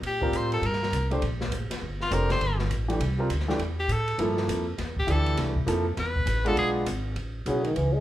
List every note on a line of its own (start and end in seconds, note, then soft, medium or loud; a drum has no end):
0.02 0.31 A#2 medium
0.02 ride medium
0.07 0.38 G4 medium
0.21 0.60 G3 medium
0.21 0.60 C4 medium
0.21 0.61 F4 medium
0.21 0.61 A#4 medium
0.21 kick medium
0.32 0.61 A2 medium
0.32 hi-hat pedal medium
0.32 ride medium
0.36 0.53 C5 medium
0.52 0.67 A4 medium
0.52 ride soft
0.61 0.91 G2 medium
0.61 ride medium
0.66 1.13 A#4 medium
0.73 snare soft
0.83 snare soft
0.92 1.21 C2 medium
0.92 hi-hat pedal medium
0.92 ride medium
1.11 1.21 A3 medium
1.11 1.21 D4 medium
1.11 1.21 G4 medium
1.11 1.22 C5 medium
1.11 ride soft
1.22 1.51 A#1 medium
1.22 ride medium
1.41 snare medium
1.51 1.69 A1 medium
1.51 hi-hat pedal medium
1.51 ride medium
1.70 muted upright bass stroke soft
1.70 snare soft
1.70 ride medium
1.82 2.10 G1 medium
2.01 2.15 F4 medium
2.01 snare soft
2.10 2.40 F1 medium
2.10 2.40 A3 medium
2.10 2.41 D4 medium
2.10 2.41 G4 medium
2.10 2.31 A#4 medium
2.10 2.42 C5 medium
2.10 hi-hat pedal medium
2.10 ride medium
2.30 2.58 C5 medium
2.30 snare medium
2.30 ride soft
2.40 2.69 G1 medium
2.40 ride medium
2.59 snare soft
2.70 2.99 A1 medium
2.70 hi-hat pedal soft
2.70 ride medium
2.88 2.99 E3 medium
2.88 2.99 A3 medium
2.88 2.99 D4 medium
2.88 3.00 G4 medium
2.88 ride soft
3.00 3.29 C2 medium
3.00 ride medium
3.18 3.29 G3 medium
3.18 3.29 C4 medium
3.18 3.29 F4 medium
3.18 3.29 A#4 medium
3.29 3.58 D2 medium
3.29 hi-hat pedal medium
3.29 ride medium
3.40 snare soft
3.48 3.58 E3 medium
3.48 3.59 A3 medium
3.48 3.59 D4 medium
3.48 3.59 G4 medium
3.48 snare soft
3.59 3.88 E2 medium
3.59 ride medium
3.80 3.94 G4 medium
3.88 4.18 A2 medium
3.88 4.20 A4 medium
3.88 hi-hat pedal medium
3.88 ride medium
4.08 ride soft
4.18 4.47 G2 medium
4.18 4.63 F3 medium
4.18 4.64 A#3 medium
4.18 4.64 E4 medium
4.18 4.64 A4 medium
4.18 ride medium
4.37 snare soft
4.48 4.77 F2 medium
4.48 hi-hat pedal medium
4.48 ride medium
4.78 5.06 E2 medium
4.78 snare soft
4.78 ride medium
4.97 5.12 G4 medium
4.97 kick medium
5.07 5.36 D2 medium
5.07 5.52 E3 medium
5.07 5.53 A3 medium
5.07 5.53 D4 medium
5.07 5.53 G4 medium
5.07 5.39 A4 medium
5.07 hi-hat pedal medium
5.07 ride medium
5.26 ride soft
5.37 5.66 C2 medium
5.37 snare soft
5.37 ride medium
5.56 kick medium
5.66 5.96 F2 medium
5.66 5.84 F3 medium
5.66 5.84 A#3 medium
5.66 5.84 E4 medium
5.66 5.85 A4 medium
5.66 hi-hat pedal medium
5.66 ride medium
5.97 6.25 E2 medium
5.97 6.49 B4 medium
5.97 snare soft
5.97 ride medium
6.16 kick medium
6.26 6.55 A1 medium
6.26 hi-hat pedal soft
6.26 ride medium
6.45 6.84 G#3 medium
6.45 6.84 B3 medium
6.45 6.84 D4 medium
6.45 6.85 F4 medium
6.45 6.58 A4 loud
6.45 ride soft
6.56 6.85 B1 medium
6.56 6.69 G#4 medium
6.56 ride medium
6.86 7.15 G#1 medium
6.86 hi-hat pedal medium
6.86 ride medium
7.16 7.45 A1 medium
7.16 ride medium
7.46 7.75 B1 medium
7.46 7.66 C#3 medium
7.46 7.63 F#3 medium
7.46 7.63 B3 medium
7.46 7.64 E4 medium
7.46 7.64 G#4 medium
7.46 hi-hat pedal soft
7.46 ride medium
7.64 7.77 D#3 medium
7.64 ride soft
7.76 8.00 C#2 medium
7.76 7.95 E3 medium
7.76 ride medium
7.93 8.00 G#3 medium